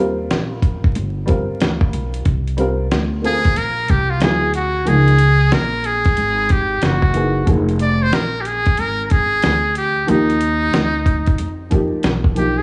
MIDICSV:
0, 0, Header, 1, 6, 480
1, 0, Start_track
1, 0, Key_signature, -3, "minor"
1, 0, Tempo, 652174
1, 1663, Time_signature, 4, 2, 24, 8
1, 9292, End_track
2, 0, Start_track
2, 0, Title_t, "Muted trumpet"
2, 0, Program_c, 0, 59
2, 2397, Note_on_c, 0, 68, 98
2, 2629, Note_on_c, 0, 70, 107
2, 2640, Note_off_c, 0, 68, 0
2, 2872, Note_on_c, 0, 67, 93
2, 2883, Note_off_c, 0, 70, 0
2, 3020, Note_on_c, 0, 65, 90
2, 3031, Note_off_c, 0, 67, 0
2, 3114, Note_on_c, 0, 68, 101
2, 3125, Note_off_c, 0, 65, 0
2, 3346, Note_off_c, 0, 68, 0
2, 3350, Note_on_c, 0, 66, 91
2, 3589, Note_on_c, 0, 68, 107
2, 3600, Note_off_c, 0, 66, 0
2, 4074, Note_on_c, 0, 70, 97
2, 4086, Note_off_c, 0, 68, 0
2, 4312, Note_on_c, 0, 68, 104
2, 4323, Note_off_c, 0, 70, 0
2, 4796, Note_on_c, 0, 67, 87
2, 4807, Note_off_c, 0, 68, 0
2, 5039, Note_on_c, 0, 66, 76
2, 5050, Note_off_c, 0, 67, 0
2, 5511, Note_off_c, 0, 66, 0
2, 5754, Note_on_c, 0, 74, 97
2, 5905, Note_on_c, 0, 72, 107
2, 5916, Note_off_c, 0, 74, 0
2, 5993, Note_on_c, 0, 70, 104
2, 6004, Note_off_c, 0, 72, 0
2, 6189, Note_on_c, 0, 67, 73
2, 6200, Note_off_c, 0, 70, 0
2, 6226, Note_on_c, 0, 68, 98
2, 6237, Note_off_c, 0, 67, 0
2, 6474, Note_on_c, 0, 70, 109
2, 6485, Note_off_c, 0, 68, 0
2, 6664, Note_off_c, 0, 70, 0
2, 6664, Note_on_c, 0, 70, 70
2, 6707, Note_on_c, 0, 68, 94
2, 6718, Note_off_c, 0, 70, 0
2, 7185, Note_off_c, 0, 68, 0
2, 7191, Note_on_c, 0, 67, 89
2, 7432, Note_on_c, 0, 63, 91
2, 7443, Note_off_c, 0, 67, 0
2, 8627, Note_off_c, 0, 63, 0
2, 9106, Note_on_c, 0, 67, 82
2, 9255, Note_on_c, 0, 68, 85
2, 9266, Note_off_c, 0, 67, 0
2, 9292, Note_off_c, 0, 68, 0
2, 9292, End_track
3, 0, Start_track
3, 0, Title_t, "Upright piano"
3, 0, Program_c, 1, 0
3, 0, Note_on_c, 1, 55, 73
3, 0, Note_on_c, 1, 60, 66
3, 0, Note_on_c, 1, 65, 62
3, 0, Note_on_c, 1, 70, 80
3, 662, Note_off_c, 1, 55, 0
3, 665, Note_off_c, 1, 60, 0
3, 670, Note_off_c, 1, 65, 0
3, 673, Note_off_c, 1, 70, 0
3, 925, Note_on_c, 1, 55, 75
3, 934, Note_on_c, 1, 60, 66
3, 941, Note_on_c, 1, 65, 68
3, 950, Note_on_c, 1, 70, 81
3, 1619, Note_off_c, 1, 55, 0
3, 1624, Note_off_c, 1, 60, 0
3, 1627, Note_off_c, 1, 65, 0
3, 1631, Note_off_c, 1, 70, 0
3, 1890, Note_on_c, 1, 55, 74
3, 1898, Note_on_c, 1, 60, 76
3, 1908, Note_on_c, 1, 65, 70
3, 1915, Note_on_c, 1, 70, 89
3, 2084, Note_off_c, 1, 55, 0
3, 2088, Note_off_c, 1, 60, 0
3, 2093, Note_off_c, 1, 65, 0
3, 2097, Note_off_c, 1, 70, 0
3, 2368, Note_on_c, 1, 58, 67
3, 2375, Note_on_c, 1, 60, 63
3, 2384, Note_on_c, 1, 65, 68
3, 2393, Note_on_c, 1, 69, 66
3, 2443, Note_on_c, 1, 70, 77
3, 2449, Note_off_c, 1, 69, 0
3, 2738, Note_off_c, 1, 58, 0
3, 2741, Note_off_c, 1, 60, 0
3, 2746, Note_off_c, 1, 65, 0
3, 2775, Note_off_c, 1, 70, 0
3, 3092, Note_on_c, 1, 54, 67
3, 3101, Note_on_c, 1, 59, 63
3, 3108, Note_on_c, 1, 64, 63
3, 3114, Note_on_c, 1, 68, 74
3, 3285, Note_off_c, 1, 54, 0
3, 3290, Note_off_c, 1, 59, 0
3, 3293, Note_off_c, 1, 64, 0
3, 3296, Note_off_c, 1, 68, 0
3, 3570, Note_on_c, 1, 53, 58
3, 3576, Note_on_c, 1, 58, 56
3, 3586, Note_on_c, 1, 63, 56
3, 3590, Note_on_c, 1, 68, 67
3, 3764, Note_off_c, 1, 53, 0
3, 3767, Note_off_c, 1, 58, 0
3, 3772, Note_off_c, 1, 63, 0
3, 3774, Note_off_c, 1, 68, 0
3, 5250, Note_on_c, 1, 52, 62
3, 5260, Note_on_c, 1, 58, 53
3, 5268, Note_on_c, 1, 63, 54
3, 5276, Note_on_c, 1, 68, 68
3, 5488, Note_on_c, 1, 53, 65
3, 5489, Note_off_c, 1, 58, 0
3, 5495, Note_off_c, 1, 63, 0
3, 5500, Note_off_c, 1, 68, 0
3, 5500, Note_on_c, 1, 58, 59
3, 5506, Note_on_c, 1, 63, 61
3, 5511, Note_on_c, 1, 68, 73
3, 5557, Note_off_c, 1, 52, 0
3, 5683, Note_off_c, 1, 53, 0
3, 5689, Note_off_c, 1, 58, 0
3, 5692, Note_off_c, 1, 63, 0
3, 5694, Note_off_c, 1, 68, 0
3, 7410, Note_on_c, 1, 53, 67
3, 7417, Note_on_c, 1, 58, 60
3, 7425, Note_on_c, 1, 63, 62
3, 7434, Note_on_c, 1, 67, 69
3, 7604, Note_off_c, 1, 53, 0
3, 7608, Note_off_c, 1, 58, 0
3, 7612, Note_off_c, 1, 63, 0
3, 7616, Note_off_c, 1, 67, 0
3, 8615, Note_on_c, 1, 53, 70
3, 8622, Note_on_c, 1, 58, 66
3, 8630, Note_on_c, 1, 63, 61
3, 8638, Note_on_c, 1, 67, 73
3, 9079, Note_off_c, 1, 53, 0
3, 9089, Note_off_c, 1, 58, 0
3, 9090, Note_on_c, 1, 53, 57
3, 9099, Note_off_c, 1, 63, 0
3, 9100, Note_on_c, 1, 58, 56
3, 9108, Note_off_c, 1, 67, 0
3, 9110, Note_on_c, 1, 63, 52
3, 9119, Note_on_c, 1, 67, 60
3, 9284, Note_off_c, 1, 53, 0
3, 9289, Note_off_c, 1, 58, 0
3, 9292, Note_off_c, 1, 63, 0
3, 9292, Note_off_c, 1, 67, 0
3, 9292, End_track
4, 0, Start_track
4, 0, Title_t, "Upright bass"
4, 0, Program_c, 2, 32
4, 0, Note_on_c, 2, 39, 105
4, 225, Note_on_c, 2, 34, 88
4, 236, Note_off_c, 2, 39, 0
4, 680, Note_off_c, 2, 34, 0
4, 706, Note_on_c, 2, 31, 96
4, 1078, Note_off_c, 2, 31, 0
4, 1185, Note_on_c, 2, 38, 77
4, 1412, Note_off_c, 2, 38, 0
4, 1424, Note_on_c, 2, 35, 88
4, 1651, Note_off_c, 2, 35, 0
4, 1663, Note_on_c, 2, 36, 100
4, 2119, Note_off_c, 2, 36, 0
4, 2145, Note_on_c, 2, 38, 88
4, 2600, Note_off_c, 2, 38, 0
4, 2629, Note_on_c, 2, 34, 81
4, 2854, Note_off_c, 2, 34, 0
4, 2868, Note_on_c, 2, 36, 85
4, 3108, Note_off_c, 2, 36, 0
4, 3108, Note_on_c, 2, 38, 101
4, 3561, Note_off_c, 2, 38, 0
4, 3587, Note_on_c, 2, 37, 104
4, 4041, Note_off_c, 2, 37, 0
4, 4065, Note_on_c, 2, 34, 96
4, 4520, Note_off_c, 2, 34, 0
4, 4546, Note_on_c, 2, 32, 93
4, 5000, Note_off_c, 2, 32, 0
4, 5022, Note_on_c, 2, 30, 104
4, 5478, Note_off_c, 2, 30, 0
4, 5501, Note_on_c, 2, 29, 99
4, 5958, Note_off_c, 2, 29, 0
4, 6467, Note_on_c, 2, 32, 90
4, 6921, Note_off_c, 2, 32, 0
4, 6943, Note_on_c, 2, 38, 90
4, 7399, Note_off_c, 2, 38, 0
4, 7423, Note_on_c, 2, 39, 104
4, 7879, Note_off_c, 2, 39, 0
4, 7906, Note_on_c, 2, 38, 81
4, 8361, Note_off_c, 2, 38, 0
4, 8384, Note_on_c, 2, 41, 88
4, 8757, Note_off_c, 2, 41, 0
4, 8862, Note_on_c, 2, 35, 101
4, 9292, Note_off_c, 2, 35, 0
4, 9292, End_track
5, 0, Start_track
5, 0, Title_t, "Muted upright bass strokes"
5, 1097, Note_on_c, 9, 29, 44
5, 1170, Note_off_c, 9, 29, 0
5, 8776, Note_on_c, 9, 29, 49
5, 8850, Note_off_c, 9, 29, 0
5, 9292, End_track
6, 0, Start_track
6, 0, Title_t, "Drums"
6, 225, Note_on_c, 9, 42, 75
6, 227, Note_on_c, 9, 38, 120
6, 299, Note_off_c, 9, 42, 0
6, 301, Note_off_c, 9, 38, 0
6, 459, Note_on_c, 9, 36, 95
6, 461, Note_on_c, 9, 42, 61
6, 533, Note_off_c, 9, 36, 0
6, 535, Note_off_c, 9, 42, 0
6, 619, Note_on_c, 9, 36, 97
6, 693, Note_off_c, 9, 36, 0
6, 701, Note_on_c, 9, 42, 83
6, 775, Note_off_c, 9, 42, 0
6, 940, Note_on_c, 9, 42, 67
6, 949, Note_on_c, 9, 36, 90
6, 1013, Note_off_c, 9, 42, 0
6, 1022, Note_off_c, 9, 36, 0
6, 1181, Note_on_c, 9, 42, 81
6, 1189, Note_on_c, 9, 38, 105
6, 1254, Note_off_c, 9, 42, 0
6, 1263, Note_off_c, 9, 38, 0
6, 1332, Note_on_c, 9, 36, 81
6, 1406, Note_off_c, 9, 36, 0
6, 1422, Note_on_c, 9, 42, 72
6, 1496, Note_off_c, 9, 42, 0
6, 1574, Note_on_c, 9, 42, 60
6, 1648, Note_off_c, 9, 42, 0
6, 1659, Note_on_c, 9, 42, 86
6, 1661, Note_on_c, 9, 36, 108
6, 1733, Note_off_c, 9, 42, 0
6, 1735, Note_off_c, 9, 36, 0
6, 1822, Note_on_c, 9, 42, 46
6, 1895, Note_off_c, 9, 42, 0
6, 1898, Note_on_c, 9, 42, 74
6, 1971, Note_off_c, 9, 42, 0
6, 2145, Note_on_c, 9, 42, 75
6, 2147, Note_on_c, 9, 38, 112
6, 2218, Note_off_c, 9, 42, 0
6, 2221, Note_off_c, 9, 38, 0
6, 2388, Note_on_c, 9, 42, 61
6, 2461, Note_off_c, 9, 42, 0
6, 2534, Note_on_c, 9, 42, 44
6, 2540, Note_on_c, 9, 36, 86
6, 2608, Note_off_c, 9, 42, 0
6, 2614, Note_off_c, 9, 36, 0
6, 2622, Note_on_c, 9, 42, 75
6, 2695, Note_off_c, 9, 42, 0
6, 2858, Note_on_c, 9, 42, 65
6, 2868, Note_on_c, 9, 36, 85
6, 2932, Note_off_c, 9, 42, 0
6, 2941, Note_off_c, 9, 36, 0
6, 3094, Note_on_c, 9, 42, 82
6, 3103, Note_on_c, 9, 38, 105
6, 3168, Note_off_c, 9, 42, 0
6, 3177, Note_off_c, 9, 38, 0
6, 3339, Note_on_c, 9, 42, 72
6, 3412, Note_off_c, 9, 42, 0
6, 3581, Note_on_c, 9, 42, 89
6, 3655, Note_off_c, 9, 42, 0
6, 3737, Note_on_c, 9, 42, 49
6, 3810, Note_off_c, 9, 42, 0
6, 3815, Note_on_c, 9, 42, 73
6, 3889, Note_off_c, 9, 42, 0
6, 4061, Note_on_c, 9, 42, 74
6, 4063, Note_on_c, 9, 38, 116
6, 4134, Note_off_c, 9, 42, 0
6, 4136, Note_off_c, 9, 38, 0
6, 4298, Note_on_c, 9, 42, 63
6, 4372, Note_off_c, 9, 42, 0
6, 4450, Note_on_c, 9, 42, 45
6, 4457, Note_on_c, 9, 36, 89
6, 4523, Note_off_c, 9, 42, 0
6, 4531, Note_off_c, 9, 36, 0
6, 4540, Note_on_c, 9, 42, 77
6, 4613, Note_off_c, 9, 42, 0
6, 4778, Note_on_c, 9, 42, 67
6, 4786, Note_on_c, 9, 36, 86
6, 4851, Note_off_c, 9, 42, 0
6, 4860, Note_off_c, 9, 36, 0
6, 5016, Note_on_c, 9, 42, 83
6, 5025, Note_on_c, 9, 38, 106
6, 5090, Note_off_c, 9, 42, 0
6, 5098, Note_off_c, 9, 38, 0
6, 5169, Note_on_c, 9, 36, 80
6, 5243, Note_off_c, 9, 36, 0
6, 5254, Note_on_c, 9, 42, 73
6, 5328, Note_off_c, 9, 42, 0
6, 5499, Note_on_c, 9, 36, 114
6, 5499, Note_on_c, 9, 42, 82
6, 5572, Note_off_c, 9, 42, 0
6, 5573, Note_off_c, 9, 36, 0
6, 5657, Note_on_c, 9, 42, 46
6, 5731, Note_off_c, 9, 42, 0
6, 5736, Note_on_c, 9, 42, 78
6, 5810, Note_off_c, 9, 42, 0
6, 5981, Note_on_c, 9, 42, 80
6, 5983, Note_on_c, 9, 38, 117
6, 6055, Note_off_c, 9, 42, 0
6, 6057, Note_off_c, 9, 38, 0
6, 6220, Note_on_c, 9, 42, 67
6, 6294, Note_off_c, 9, 42, 0
6, 6370, Note_on_c, 9, 42, 43
6, 6378, Note_on_c, 9, 36, 90
6, 6444, Note_off_c, 9, 42, 0
6, 6451, Note_off_c, 9, 36, 0
6, 6457, Note_on_c, 9, 42, 85
6, 6530, Note_off_c, 9, 42, 0
6, 6697, Note_on_c, 9, 42, 69
6, 6708, Note_on_c, 9, 36, 92
6, 6771, Note_off_c, 9, 42, 0
6, 6781, Note_off_c, 9, 36, 0
6, 6936, Note_on_c, 9, 42, 81
6, 6944, Note_on_c, 9, 38, 95
6, 7009, Note_off_c, 9, 42, 0
6, 7018, Note_off_c, 9, 38, 0
6, 7178, Note_on_c, 9, 42, 74
6, 7251, Note_off_c, 9, 42, 0
6, 7421, Note_on_c, 9, 42, 80
6, 7494, Note_off_c, 9, 42, 0
6, 7578, Note_on_c, 9, 42, 45
6, 7652, Note_off_c, 9, 42, 0
6, 7658, Note_on_c, 9, 42, 80
6, 7732, Note_off_c, 9, 42, 0
6, 7901, Note_on_c, 9, 42, 76
6, 7903, Note_on_c, 9, 38, 120
6, 7974, Note_off_c, 9, 42, 0
6, 7976, Note_off_c, 9, 38, 0
6, 8139, Note_on_c, 9, 36, 96
6, 8142, Note_on_c, 9, 42, 66
6, 8212, Note_off_c, 9, 36, 0
6, 8216, Note_off_c, 9, 42, 0
6, 8290, Note_on_c, 9, 42, 47
6, 8298, Note_on_c, 9, 36, 91
6, 8364, Note_off_c, 9, 42, 0
6, 8372, Note_off_c, 9, 36, 0
6, 8378, Note_on_c, 9, 42, 83
6, 8452, Note_off_c, 9, 42, 0
6, 8619, Note_on_c, 9, 42, 64
6, 8627, Note_on_c, 9, 36, 87
6, 8692, Note_off_c, 9, 42, 0
6, 8701, Note_off_c, 9, 36, 0
6, 8854, Note_on_c, 9, 42, 86
6, 8863, Note_on_c, 9, 38, 98
6, 8928, Note_off_c, 9, 42, 0
6, 8936, Note_off_c, 9, 38, 0
6, 9010, Note_on_c, 9, 36, 83
6, 9084, Note_off_c, 9, 36, 0
6, 9098, Note_on_c, 9, 42, 71
6, 9171, Note_off_c, 9, 42, 0
6, 9292, End_track
0, 0, End_of_file